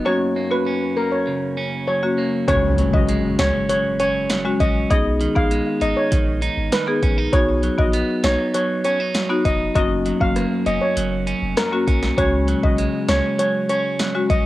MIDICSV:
0, 0, Header, 1, 7, 480
1, 0, Start_track
1, 0, Tempo, 606061
1, 46, Time_signature, 4, 2, 24, 8
1, 11452, End_track
2, 0, Start_track
2, 0, Title_t, "Steel pan"
2, 0, Program_c, 0, 114
2, 46, Note_on_c, 0, 73, 99
2, 218, Note_off_c, 0, 73, 0
2, 406, Note_on_c, 0, 71, 76
2, 492, Note_off_c, 0, 71, 0
2, 765, Note_on_c, 0, 70, 80
2, 851, Note_off_c, 0, 70, 0
2, 885, Note_on_c, 0, 73, 71
2, 971, Note_off_c, 0, 73, 0
2, 1485, Note_on_c, 0, 73, 75
2, 1824, Note_off_c, 0, 73, 0
2, 1966, Note_on_c, 0, 73, 104
2, 2138, Note_off_c, 0, 73, 0
2, 2326, Note_on_c, 0, 75, 73
2, 2412, Note_off_c, 0, 75, 0
2, 2685, Note_on_c, 0, 73, 85
2, 2772, Note_off_c, 0, 73, 0
2, 2926, Note_on_c, 0, 73, 79
2, 3012, Note_off_c, 0, 73, 0
2, 3166, Note_on_c, 0, 73, 78
2, 3252, Note_off_c, 0, 73, 0
2, 3645, Note_on_c, 0, 75, 81
2, 3731, Note_off_c, 0, 75, 0
2, 3886, Note_on_c, 0, 75, 107
2, 4058, Note_off_c, 0, 75, 0
2, 4246, Note_on_c, 0, 77, 78
2, 4332, Note_off_c, 0, 77, 0
2, 4607, Note_on_c, 0, 75, 87
2, 4692, Note_off_c, 0, 75, 0
2, 4725, Note_on_c, 0, 73, 75
2, 4811, Note_off_c, 0, 73, 0
2, 5327, Note_on_c, 0, 71, 78
2, 5665, Note_off_c, 0, 71, 0
2, 5805, Note_on_c, 0, 73, 104
2, 5977, Note_off_c, 0, 73, 0
2, 6166, Note_on_c, 0, 75, 76
2, 6252, Note_off_c, 0, 75, 0
2, 6526, Note_on_c, 0, 73, 85
2, 6612, Note_off_c, 0, 73, 0
2, 6766, Note_on_c, 0, 73, 78
2, 6852, Note_off_c, 0, 73, 0
2, 7006, Note_on_c, 0, 73, 78
2, 7092, Note_off_c, 0, 73, 0
2, 7486, Note_on_c, 0, 75, 84
2, 7572, Note_off_c, 0, 75, 0
2, 7726, Note_on_c, 0, 75, 105
2, 7898, Note_off_c, 0, 75, 0
2, 8086, Note_on_c, 0, 77, 79
2, 8172, Note_off_c, 0, 77, 0
2, 8445, Note_on_c, 0, 75, 84
2, 8531, Note_off_c, 0, 75, 0
2, 8565, Note_on_c, 0, 73, 74
2, 8651, Note_off_c, 0, 73, 0
2, 9166, Note_on_c, 0, 70, 81
2, 9504, Note_off_c, 0, 70, 0
2, 9646, Note_on_c, 0, 73, 102
2, 9818, Note_off_c, 0, 73, 0
2, 10006, Note_on_c, 0, 75, 72
2, 10092, Note_off_c, 0, 75, 0
2, 10366, Note_on_c, 0, 73, 87
2, 10452, Note_off_c, 0, 73, 0
2, 10605, Note_on_c, 0, 73, 79
2, 10691, Note_off_c, 0, 73, 0
2, 10846, Note_on_c, 0, 73, 81
2, 10932, Note_off_c, 0, 73, 0
2, 11325, Note_on_c, 0, 75, 81
2, 11411, Note_off_c, 0, 75, 0
2, 11452, End_track
3, 0, Start_track
3, 0, Title_t, "Marimba"
3, 0, Program_c, 1, 12
3, 42, Note_on_c, 1, 58, 89
3, 45, Note_on_c, 1, 61, 86
3, 47, Note_on_c, 1, 66, 100
3, 204, Note_off_c, 1, 58, 0
3, 206, Note_off_c, 1, 61, 0
3, 207, Note_off_c, 1, 66, 0
3, 402, Note_on_c, 1, 58, 74
3, 405, Note_on_c, 1, 61, 69
3, 407, Note_on_c, 1, 66, 87
3, 564, Note_off_c, 1, 58, 0
3, 565, Note_off_c, 1, 61, 0
3, 567, Note_off_c, 1, 66, 0
3, 1604, Note_on_c, 1, 58, 73
3, 1606, Note_on_c, 1, 61, 68
3, 1608, Note_on_c, 1, 66, 87
3, 1765, Note_off_c, 1, 58, 0
3, 1766, Note_off_c, 1, 61, 0
3, 1767, Note_off_c, 1, 66, 0
3, 1962, Note_on_c, 1, 56, 92
3, 1965, Note_on_c, 1, 61, 86
3, 1967, Note_on_c, 1, 66, 100
3, 2124, Note_off_c, 1, 56, 0
3, 2125, Note_off_c, 1, 61, 0
3, 2127, Note_off_c, 1, 66, 0
3, 2323, Note_on_c, 1, 56, 77
3, 2325, Note_on_c, 1, 61, 74
3, 2328, Note_on_c, 1, 66, 86
3, 2485, Note_off_c, 1, 56, 0
3, 2486, Note_off_c, 1, 61, 0
3, 2487, Note_off_c, 1, 66, 0
3, 3523, Note_on_c, 1, 56, 82
3, 3525, Note_on_c, 1, 61, 73
3, 3528, Note_on_c, 1, 66, 87
3, 3685, Note_off_c, 1, 56, 0
3, 3686, Note_off_c, 1, 61, 0
3, 3687, Note_off_c, 1, 66, 0
3, 3883, Note_on_c, 1, 59, 97
3, 3885, Note_on_c, 1, 63, 86
3, 3888, Note_on_c, 1, 68, 106
3, 4044, Note_off_c, 1, 59, 0
3, 4046, Note_off_c, 1, 63, 0
3, 4047, Note_off_c, 1, 68, 0
3, 4242, Note_on_c, 1, 59, 82
3, 4245, Note_on_c, 1, 63, 72
3, 4247, Note_on_c, 1, 68, 88
3, 4404, Note_off_c, 1, 59, 0
3, 4405, Note_off_c, 1, 63, 0
3, 4407, Note_off_c, 1, 68, 0
3, 5442, Note_on_c, 1, 59, 81
3, 5445, Note_on_c, 1, 63, 75
3, 5447, Note_on_c, 1, 68, 96
3, 5604, Note_off_c, 1, 59, 0
3, 5605, Note_off_c, 1, 63, 0
3, 5607, Note_off_c, 1, 68, 0
3, 5803, Note_on_c, 1, 59, 98
3, 5805, Note_on_c, 1, 63, 88
3, 5807, Note_on_c, 1, 66, 103
3, 5964, Note_off_c, 1, 59, 0
3, 5966, Note_off_c, 1, 63, 0
3, 5967, Note_off_c, 1, 66, 0
3, 6163, Note_on_c, 1, 59, 81
3, 6165, Note_on_c, 1, 63, 71
3, 6167, Note_on_c, 1, 66, 88
3, 6325, Note_off_c, 1, 59, 0
3, 6326, Note_off_c, 1, 63, 0
3, 6327, Note_off_c, 1, 66, 0
3, 7363, Note_on_c, 1, 59, 82
3, 7365, Note_on_c, 1, 63, 76
3, 7367, Note_on_c, 1, 66, 95
3, 7524, Note_off_c, 1, 59, 0
3, 7526, Note_off_c, 1, 63, 0
3, 7527, Note_off_c, 1, 66, 0
3, 7724, Note_on_c, 1, 58, 96
3, 7726, Note_on_c, 1, 61, 84
3, 7729, Note_on_c, 1, 66, 106
3, 7885, Note_off_c, 1, 58, 0
3, 7886, Note_off_c, 1, 61, 0
3, 7888, Note_off_c, 1, 66, 0
3, 8083, Note_on_c, 1, 58, 79
3, 8086, Note_on_c, 1, 61, 75
3, 8088, Note_on_c, 1, 66, 86
3, 8245, Note_off_c, 1, 58, 0
3, 8246, Note_off_c, 1, 61, 0
3, 8247, Note_off_c, 1, 66, 0
3, 9284, Note_on_c, 1, 58, 81
3, 9287, Note_on_c, 1, 61, 74
3, 9289, Note_on_c, 1, 66, 86
3, 9445, Note_off_c, 1, 58, 0
3, 9447, Note_off_c, 1, 61, 0
3, 9448, Note_off_c, 1, 66, 0
3, 9644, Note_on_c, 1, 56, 93
3, 9646, Note_on_c, 1, 61, 86
3, 9648, Note_on_c, 1, 66, 106
3, 9805, Note_off_c, 1, 56, 0
3, 9806, Note_off_c, 1, 61, 0
3, 9807, Note_off_c, 1, 66, 0
3, 10004, Note_on_c, 1, 56, 79
3, 10006, Note_on_c, 1, 61, 72
3, 10009, Note_on_c, 1, 66, 84
3, 10165, Note_off_c, 1, 56, 0
3, 10166, Note_off_c, 1, 61, 0
3, 10168, Note_off_c, 1, 66, 0
3, 11203, Note_on_c, 1, 56, 83
3, 11205, Note_on_c, 1, 61, 72
3, 11208, Note_on_c, 1, 66, 89
3, 11365, Note_off_c, 1, 56, 0
3, 11366, Note_off_c, 1, 61, 0
3, 11367, Note_off_c, 1, 66, 0
3, 11452, End_track
4, 0, Start_track
4, 0, Title_t, "Clean electric guitar"
4, 0, Program_c, 2, 27
4, 0, Note_on_c, 2, 54, 65
4, 0, Note_on_c, 2, 59, 61
4, 0, Note_on_c, 2, 63, 70
4, 47, Note_on_c, 2, 42, 88
4, 94, Note_off_c, 2, 59, 0
4, 94, Note_off_c, 2, 63, 0
4, 287, Note_on_c, 2, 58, 62
4, 527, Note_on_c, 2, 61, 66
4, 757, Note_off_c, 2, 58, 0
4, 766, Note_on_c, 2, 58, 57
4, 1006, Note_on_c, 2, 49, 66
4, 1243, Note_off_c, 2, 61, 0
4, 1246, Note_on_c, 2, 61, 72
4, 1483, Note_off_c, 2, 54, 0
4, 1486, Note_on_c, 2, 54, 63
4, 1716, Note_off_c, 2, 58, 0
4, 1726, Note_on_c, 2, 58, 59
4, 1956, Note_off_c, 2, 49, 0
4, 1966, Note_on_c, 2, 49, 86
4, 1967, Note_off_c, 2, 42, 0
4, 2014, Note_off_c, 2, 58, 0
4, 2204, Note_off_c, 2, 54, 0
4, 2207, Note_on_c, 2, 54, 63
4, 2446, Note_on_c, 2, 56, 65
4, 2683, Note_off_c, 2, 61, 0
4, 2686, Note_on_c, 2, 61, 68
4, 2916, Note_off_c, 2, 54, 0
4, 2926, Note_on_c, 2, 54, 63
4, 3156, Note_off_c, 2, 61, 0
4, 3166, Note_on_c, 2, 61, 75
4, 3396, Note_off_c, 2, 54, 0
4, 3406, Note_on_c, 2, 54, 66
4, 3636, Note_off_c, 2, 61, 0
4, 3646, Note_on_c, 2, 61, 69
4, 3886, Note_off_c, 2, 49, 0
4, 3934, Note_off_c, 2, 54, 0
4, 3934, Note_off_c, 2, 61, 0
4, 4125, Note_on_c, 2, 51, 63
4, 4362, Note_off_c, 2, 56, 0
4, 4365, Note_on_c, 2, 56, 64
4, 4605, Note_on_c, 2, 63, 71
4, 4843, Note_off_c, 2, 51, 0
4, 4846, Note_on_c, 2, 51, 66
4, 5082, Note_off_c, 2, 63, 0
4, 5085, Note_on_c, 2, 63, 77
4, 5322, Note_off_c, 2, 51, 0
4, 5326, Note_on_c, 2, 51, 68
4, 5562, Note_off_c, 2, 63, 0
4, 5566, Note_on_c, 2, 61, 67
4, 5685, Note_off_c, 2, 61, 0
4, 5685, Note_on_c, 2, 63, 63
4, 5853, Note_off_c, 2, 63, 0
4, 5854, Note_off_c, 2, 56, 0
4, 6042, Note_off_c, 2, 51, 0
4, 6045, Note_on_c, 2, 54, 63
4, 6285, Note_on_c, 2, 59, 68
4, 6526, Note_on_c, 2, 63, 70
4, 6763, Note_off_c, 2, 54, 0
4, 6766, Note_on_c, 2, 54, 69
4, 7003, Note_off_c, 2, 63, 0
4, 7007, Note_on_c, 2, 61, 75
4, 7126, Note_off_c, 2, 61, 0
4, 7126, Note_on_c, 2, 63, 61
4, 7243, Note_off_c, 2, 54, 0
4, 7246, Note_on_c, 2, 54, 64
4, 7477, Note_off_c, 2, 63, 0
4, 7486, Note_on_c, 2, 63, 69
4, 7726, Note_on_c, 2, 42, 93
4, 7774, Note_off_c, 2, 59, 0
4, 7774, Note_off_c, 2, 63, 0
4, 7963, Note_off_c, 2, 54, 0
4, 7966, Note_on_c, 2, 54, 64
4, 8206, Note_on_c, 2, 58, 65
4, 8446, Note_on_c, 2, 61, 67
4, 8682, Note_off_c, 2, 54, 0
4, 8685, Note_on_c, 2, 54, 66
4, 8922, Note_off_c, 2, 61, 0
4, 8926, Note_on_c, 2, 61, 74
4, 9162, Note_off_c, 2, 54, 0
4, 9165, Note_on_c, 2, 54, 63
4, 9402, Note_off_c, 2, 61, 0
4, 9405, Note_on_c, 2, 61, 69
4, 9645, Note_on_c, 2, 49, 89
4, 9646, Note_off_c, 2, 42, 0
4, 9694, Note_off_c, 2, 58, 0
4, 9882, Note_off_c, 2, 54, 0
4, 9885, Note_on_c, 2, 54, 61
4, 10125, Note_on_c, 2, 56, 63
4, 10362, Note_off_c, 2, 61, 0
4, 10365, Note_on_c, 2, 61, 65
4, 10595, Note_off_c, 2, 54, 0
4, 10604, Note_on_c, 2, 54, 65
4, 10836, Note_off_c, 2, 61, 0
4, 10845, Note_on_c, 2, 61, 74
4, 11076, Note_off_c, 2, 54, 0
4, 11085, Note_on_c, 2, 54, 64
4, 11315, Note_off_c, 2, 61, 0
4, 11325, Note_on_c, 2, 61, 70
4, 11452, Note_off_c, 2, 49, 0
4, 11452, Note_off_c, 2, 54, 0
4, 11452, Note_off_c, 2, 56, 0
4, 11452, Note_off_c, 2, 61, 0
4, 11452, End_track
5, 0, Start_track
5, 0, Title_t, "Sub bass"
5, 0, Program_c, 3, 38
5, 1965, Note_on_c, 3, 37, 112
5, 2254, Note_off_c, 3, 37, 0
5, 2326, Note_on_c, 3, 35, 89
5, 2518, Note_off_c, 3, 35, 0
5, 2685, Note_on_c, 3, 37, 98
5, 2782, Note_off_c, 3, 37, 0
5, 3645, Note_on_c, 3, 34, 94
5, 3838, Note_off_c, 3, 34, 0
5, 3885, Note_on_c, 3, 35, 106
5, 4174, Note_off_c, 3, 35, 0
5, 4246, Note_on_c, 3, 34, 100
5, 4438, Note_off_c, 3, 34, 0
5, 4605, Note_on_c, 3, 32, 97
5, 4701, Note_off_c, 3, 32, 0
5, 4847, Note_on_c, 3, 34, 102
5, 5135, Note_off_c, 3, 34, 0
5, 5205, Note_on_c, 3, 32, 84
5, 5302, Note_off_c, 3, 32, 0
5, 5565, Note_on_c, 3, 34, 97
5, 5758, Note_off_c, 3, 34, 0
5, 5805, Note_on_c, 3, 35, 99
5, 6094, Note_off_c, 3, 35, 0
5, 6166, Note_on_c, 3, 34, 95
5, 6358, Note_off_c, 3, 34, 0
5, 6526, Note_on_c, 3, 35, 96
5, 6622, Note_off_c, 3, 35, 0
5, 7486, Note_on_c, 3, 29, 86
5, 7678, Note_off_c, 3, 29, 0
5, 7725, Note_on_c, 3, 30, 115
5, 8014, Note_off_c, 3, 30, 0
5, 8086, Note_on_c, 3, 30, 94
5, 8278, Note_off_c, 3, 30, 0
5, 8445, Note_on_c, 3, 29, 97
5, 8542, Note_off_c, 3, 29, 0
5, 8686, Note_on_c, 3, 30, 99
5, 8974, Note_off_c, 3, 30, 0
5, 9045, Note_on_c, 3, 29, 87
5, 9142, Note_off_c, 3, 29, 0
5, 9406, Note_on_c, 3, 35, 98
5, 9598, Note_off_c, 3, 35, 0
5, 9646, Note_on_c, 3, 37, 112
5, 9934, Note_off_c, 3, 37, 0
5, 10006, Note_on_c, 3, 35, 92
5, 10198, Note_off_c, 3, 35, 0
5, 10366, Note_on_c, 3, 37, 96
5, 10462, Note_off_c, 3, 37, 0
5, 11325, Note_on_c, 3, 34, 92
5, 11452, Note_off_c, 3, 34, 0
5, 11452, End_track
6, 0, Start_track
6, 0, Title_t, "Impact"
6, 0, Program_c, 4, 103
6, 1966, Note_on_c, 4, 60, 88
6, 3886, Note_off_c, 4, 60, 0
6, 11452, End_track
7, 0, Start_track
7, 0, Title_t, "Drums"
7, 1965, Note_on_c, 9, 36, 127
7, 1966, Note_on_c, 9, 42, 79
7, 2044, Note_off_c, 9, 36, 0
7, 2045, Note_off_c, 9, 42, 0
7, 2204, Note_on_c, 9, 42, 56
7, 2283, Note_off_c, 9, 42, 0
7, 2326, Note_on_c, 9, 36, 91
7, 2405, Note_off_c, 9, 36, 0
7, 2445, Note_on_c, 9, 42, 80
7, 2524, Note_off_c, 9, 42, 0
7, 2684, Note_on_c, 9, 42, 52
7, 2685, Note_on_c, 9, 38, 116
7, 2763, Note_off_c, 9, 42, 0
7, 2764, Note_off_c, 9, 38, 0
7, 2926, Note_on_c, 9, 42, 86
7, 3006, Note_off_c, 9, 42, 0
7, 3166, Note_on_c, 9, 42, 60
7, 3245, Note_off_c, 9, 42, 0
7, 3403, Note_on_c, 9, 42, 76
7, 3405, Note_on_c, 9, 38, 121
7, 3483, Note_off_c, 9, 42, 0
7, 3485, Note_off_c, 9, 38, 0
7, 3645, Note_on_c, 9, 36, 92
7, 3645, Note_on_c, 9, 42, 60
7, 3724, Note_off_c, 9, 36, 0
7, 3725, Note_off_c, 9, 42, 0
7, 3885, Note_on_c, 9, 36, 127
7, 3886, Note_on_c, 9, 42, 82
7, 3964, Note_off_c, 9, 36, 0
7, 3965, Note_off_c, 9, 42, 0
7, 4124, Note_on_c, 9, 42, 57
7, 4203, Note_off_c, 9, 42, 0
7, 4246, Note_on_c, 9, 36, 90
7, 4325, Note_off_c, 9, 36, 0
7, 4364, Note_on_c, 9, 42, 78
7, 4444, Note_off_c, 9, 42, 0
7, 4603, Note_on_c, 9, 42, 50
7, 4682, Note_off_c, 9, 42, 0
7, 4846, Note_on_c, 9, 42, 86
7, 4847, Note_on_c, 9, 36, 108
7, 4925, Note_off_c, 9, 42, 0
7, 4926, Note_off_c, 9, 36, 0
7, 5085, Note_on_c, 9, 42, 60
7, 5164, Note_off_c, 9, 42, 0
7, 5324, Note_on_c, 9, 42, 75
7, 5326, Note_on_c, 9, 38, 121
7, 5403, Note_off_c, 9, 42, 0
7, 5405, Note_off_c, 9, 38, 0
7, 5565, Note_on_c, 9, 36, 95
7, 5565, Note_on_c, 9, 42, 59
7, 5644, Note_off_c, 9, 42, 0
7, 5645, Note_off_c, 9, 36, 0
7, 5805, Note_on_c, 9, 36, 127
7, 5805, Note_on_c, 9, 42, 81
7, 5884, Note_off_c, 9, 36, 0
7, 5884, Note_off_c, 9, 42, 0
7, 6044, Note_on_c, 9, 42, 58
7, 6123, Note_off_c, 9, 42, 0
7, 6166, Note_on_c, 9, 36, 91
7, 6245, Note_off_c, 9, 36, 0
7, 6284, Note_on_c, 9, 42, 75
7, 6363, Note_off_c, 9, 42, 0
7, 6523, Note_on_c, 9, 42, 53
7, 6524, Note_on_c, 9, 38, 117
7, 6602, Note_off_c, 9, 42, 0
7, 6603, Note_off_c, 9, 38, 0
7, 6766, Note_on_c, 9, 42, 90
7, 6845, Note_off_c, 9, 42, 0
7, 7005, Note_on_c, 9, 42, 59
7, 7084, Note_off_c, 9, 42, 0
7, 7243, Note_on_c, 9, 42, 70
7, 7245, Note_on_c, 9, 38, 126
7, 7322, Note_off_c, 9, 42, 0
7, 7324, Note_off_c, 9, 38, 0
7, 7485, Note_on_c, 9, 42, 62
7, 7486, Note_on_c, 9, 36, 98
7, 7565, Note_off_c, 9, 36, 0
7, 7565, Note_off_c, 9, 42, 0
7, 7725, Note_on_c, 9, 36, 122
7, 7726, Note_on_c, 9, 42, 82
7, 7805, Note_off_c, 9, 36, 0
7, 7805, Note_off_c, 9, 42, 0
7, 7965, Note_on_c, 9, 42, 58
7, 8044, Note_off_c, 9, 42, 0
7, 8086, Note_on_c, 9, 36, 90
7, 8165, Note_off_c, 9, 36, 0
7, 8205, Note_on_c, 9, 42, 73
7, 8206, Note_on_c, 9, 37, 70
7, 8284, Note_off_c, 9, 42, 0
7, 8285, Note_off_c, 9, 37, 0
7, 8444, Note_on_c, 9, 42, 52
7, 8523, Note_off_c, 9, 42, 0
7, 8687, Note_on_c, 9, 42, 91
7, 8766, Note_off_c, 9, 42, 0
7, 8927, Note_on_c, 9, 42, 59
7, 9006, Note_off_c, 9, 42, 0
7, 9164, Note_on_c, 9, 42, 74
7, 9166, Note_on_c, 9, 37, 110
7, 9166, Note_on_c, 9, 38, 127
7, 9243, Note_off_c, 9, 42, 0
7, 9245, Note_off_c, 9, 37, 0
7, 9245, Note_off_c, 9, 38, 0
7, 9406, Note_on_c, 9, 36, 94
7, 9406, Note_on_c, 9, 42, 61
7, 9485, Note_off_c, 9, 36, 0
7, 9485, Note_off_c, 9, 42, 0
7, 9525, Note_on_c, 9, 38, 65
7, 9604, Note_off_c, 9, 38, 0
7, 9645, Note_on_c, 9, 36, 127
7, 9646, Note_on_c, 9, 42, 77
7, 9725, Note_off_c, 9, 36, 0
7, 9725, Note_off_c, 9, 42, 0
7, 9884, Note_on_c, 9, 42, 55
7, 9963, Note_off_c, 9, 42, 0
7, 10006, Note_on_c, 9, 36, 91
7, 10085, Note_off_c, 9, 36, 0
7, 10124, Note_on_c, 9, 42, 78
7, 10203, Note_off_c, 9, 42, 0
7, 10363, Note_on_c, 9, 42, 50
7, 10364, Note_on_c, 9, 38, 118
7, 10442, Note_off_c, 9, 42, 0
7, 10443, Note_off_c, 9, 38, 0
7, 10606, Note_on_c, 9, 42, 91
7, 10686, Note_off_c, 9, 42, 0
7, 10845, Note_on_c, 9, 42, 62
7, 10925, Note_off_c, 9, 42, 0
7, 11083, Note_on_c, 9, 42, 71
7, 11085, Note_on_c, 9, 38, 125
7, 11162, Note_off_c, 9, 42, 0
7, 11164, Note_off_c, 9, 38, 0
7, 11325, Note_on_c, 9, 36, 100
7, 11326, Note_on_c, 9, 42, 63
7, 11405, Note_off_c, 9, 36, 0
7, 11405, Note_off_c, 9, 42, 0
7, 11452, End_track
0, 0, End_of_file